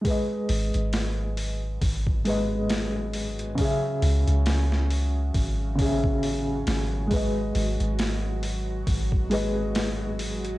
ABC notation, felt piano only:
X:1
M:4/4
L:1/8
Q:"Swing 16ths" 1/4=68
K:G#phr
V:1 name="Felt piano"
[G,GBd]4- [G,GBd] [G,GBd] z2 | [C,CGe]4- [C,CGe] [C,CGe]3 | [G,GBd]4- [G,GBd] [G,GBd] z2 |]